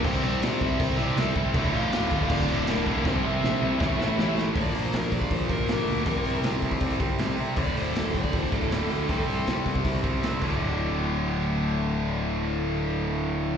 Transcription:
<<
  \new Staff \with { instrumentName = "Lead electric guitar" } { \time 4/4 \key d \minor \tempo 4 = 159 <c' c''>8 <c' c''>8 <d' d''>8 <e' e''>8 <c' c''>8 <d' d''>8 <e' e''>8. r16 | <e' e''>8 <f' f''>4. <d' d''>4 <bes bes'>8 <bes bes'>8 | <c' c''>8 <e' e''>2. r8 | d''8 c''8 bes'8 d''8 c''8 bes'8 bes'4~ |
bes'4 r2. | d''8 c''8 a'8 d''8 c''8 a'8 a'4~ | a'4 r2. | r1 |
r1 | }
  \new Staff \with { instrumentName = "Distorted electric guitar" } { \clef bass \time 4/4 \key d \minor <c g c'>2.~ <c g c'>8 <c g c'>8 | <d, a, d>2.~ <d, a, d>8 <d, a, d>8 | <c g c'>2 <a, e a>2 | <bes, f bes>1 |
<c g c'>1 | <d, a, d>1 | <c g c'>2.~ <c g c'>8 <d, a, d>8~ | <d, a, d>1~ |
<d, a, d>1 | }
  \new Staff \with { instrumentName = "Distorted electric guitar" } { \clef bass \time 4/4 \key d \minor <c g c'>2~ <c g c'>8 <c g c'>8 <c g c'>4 | <d, a, d>2~ <d, a, d>8 <d, a, d>8 <d, a, d>4 | <c g c'>2 <a, e a>2 | <bes, f bes>2~ <bes, f bes>8 <bes, f bes>8 <bes, f bes>4 |
<c g c'>2~ <c g c'>8 <c g c'>8 <c g c'>4 | <d, a, d>2~ <d, a, d>8 <d, a, d>8 <d, a, d>4 | <c g c'>2~ <c g c'>8 <c g c'>8 <c g c'>8 <d, a, d>8~ | <d, a, d>1~ |
<d, a, d>1 | }
  \new Staff \with { instrumentName = "Distorted electric guitar" } { \clef bass \time 4/4 \key d \minor <c g c'>8 <c g c'>8 <c g c'>8 <c g c'>8 <c g c'>8 <c g c'>8 <c g c'>8 <c g c'>8 | <d, a, d>8 <d, a, d>8 <d, a, d>8 <d, a, d>8 <d, a, d>8 <d, a, d>8 <d, a, d>8 <d, a, d>8 | <c g c'>8 <c g c'>8 <c g c'>8 <c g c'>8 <a, e a>8 <a, e a>8 <a, e a>8 <a, e a>8 | r1 |
r1 | r1 | r1 | r1 |
r1 | }
  \new Staff \with { instrumentName = "Picked electric bass" } { \clef bass \time 4/4 \key d \minor c,8 c,8 bes,8 c,8 c,8 c,8 c,4 | d,,8 a,,8 d,,8 d,,8 d,,8 d,,8 d,,8 c,8 | c,8 c,8 bes,,8 c,8 a,,8 a,,8 a,,4 | bes,,8 bes,,8 bes,,8 bes,,8 bes,,8 bes,,8 bes,,8 d,8 |
c,8 c,8 c,8 c,8 c,8 c,8 c,8 c8 | d,,8 d,,8 d,,8 d,,8 d,,8 d,,8 d,,8 d,8 | c,8 c,8 c,8 c,8 c,8 c,8 c,8 d,,8~ | d,,1~ |
d,,1 | }
  \new DrumStaff \with { instrumentName = "Drums" } \drummode { \time 4/4 <cymc bd>8 cymc8 <cymc sn>8 <cymc bd>8 <cymc bd>8 cymc8 <cymc sn>8 <cymc bd>8 | <cymc bd>8 cymc8 <cymc sn>8 <cymc bd>8 <cymc bd>8 cymc8 <cymc sn>8 <cymc bd>8 | <bd sn>4 sn4 <bd sn>8 sn8 sn8 sn8 | <hho bd>8 hho8 <hho sn>8 <hho bd>16 bd16 <hho bd>8 <hho bd>8 <hho sn>8 hho8 |
<hho bd>8 hho8 <hho sn>8 <hho bd>16 bd16 <hho bd>8 <hho bd>8 <hho sn>8 hho8 | <hho bd>8 hho8 <hho sn>8 <hho bd>16 bd16 <hho bd>8 <hho bd>8 <hho sn>8 hho8 | <hho bd>8 hho8 <hho sn>8 <hho bd>16 bd16 <hho bd>8 <hho bd>8 <hho sn>8 <cymc bd>8 | r4 r4 r4 r4 |
r4 r4 r4 r4 | }
>>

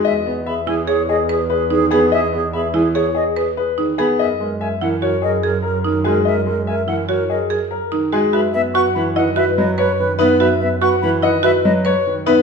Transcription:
<<
  \new Staff \with { instrumentName = "Flute" } { \time 5/4 \key fis \mixolydian \tempo 4 = 145 e''8 r8 b''8 gis''8 r8 dis''8 r4. b''8 | e''8 r8 b''8 gis''8 r8 dis''8 r4. b''8 | e''8 r8 gis''8 fis''8 r8 dis''8 r4. gis''8 | e''8 r8 gis''8 fis''8 r8 dis''8 r4. gis''8 |
b''8 e''8 cis'''8 b''8 fis''8 e''8 dis''8 r4 e''8 | b''8 e''8 cis'''8 b''8 fis''8 e''8 dis''8 r4 e''8 | }
  \new Staff \with { instrumentName = "Grand piano" } { \time 5/4 \key fis \mixolydian dis''8 r8 e''8 r8 cis''8 gis'8 r8 b'8 r8 gis'8 | dis''8 r8 e''8 r8 cis''8 gis'8 r8 b'8 r8 gis'8 | dis''8 r8 e''8 r8 cis''8 gis'8 r8 ais'8 r8 gis'8 | dis''8 r8 e''8 r8 cis''8 gis'8 r8 ais'8 r8 gis'8 |
e''8 r8 fis''8 r8 dis''8 b'8 r8 cis''8 r8 b'8 | e''8 r8 fis''8 r8 dis''8 b'8 r8 cis''8 r8 b'8 | }
  \new Staff \with { instrumentName = "Alto flute" } { \time 5/4 \key fis \mixolydian gis'8 gis'8 gis'8 gis'8 gis'8 gis'8 gis'8 gis'8 gis'8 gis'8 | gis'8 gis'8 gis'8 gis'8 gis'8 gis'8 gis'8 gis'8 gis'8 r8 | ais'8 ais'8 ais'8 ais'8 ais'8 ais'8 ais'8 ais'8 ais'8 ais'8 | ais'8 ais'8 ais'8 ais'8 ais'8 ais'8 ais'8 ais'8 ais'8 r8 |
b'8 b'8 b'8 b'8 b'8 b'8 b'8 b'8 b'8 b'8 | b'8 b'8 b'8 b'8 b'8 b'8 b'8 b'8 b'8 r8 | }
  \new Staff \with { instrumentName = "Marimba" } { \time 5/4 \key fis \mixolydian r4. e'8 gis'8 r8 b'8 r8 dis'8 gis'8 | r4. e'8 gis'8 r8 b'8 r8 dis'8 gis'8 | r4. e'8 fis'8 r8 gis'8 r8 dis'8 fis'8 | r4. e'8 fis'8 r8 gis'8 r8 dis'8 fis'8 |
fis'8 r8 fis'8 r8 e'8 fis'8 r8 b'8 r8 dis'8 | fis'8 r8 fis'8 r8 e'8 fis'8 r8 b'8 r8 dis'8 | }
  \new Staff \with { instrumentName = "Grand piano" } { \clef bass \time 5/4 \key fis \mixolydian r8 b8 r8 e8 r2 dis8 b8 | r8 b8 r8 e8 r2 dis8 b8 | r8 gis8 r8 e8 r2 dis8 gis8 | r8 gis8 r8 e8 r2 dis8 gis8 |
r8 b8 r8 e8 dis8 r8 fis8 r8 dis8 b8 | r8 b8 r8 e8 dis8 r8 fis8 r8 dis8 b8 | }
  \new Staff \with { instrumentName = "Double bass" } { \clef bass \time 5/4 \key fis \mixolydian e,1~ e,4~ | e,1~ e,4 | fis,1~ fis,4~ | fis,1~ fis,4 |
fis,1~ fis,4~ | fis,1~ fis,4 | }
>>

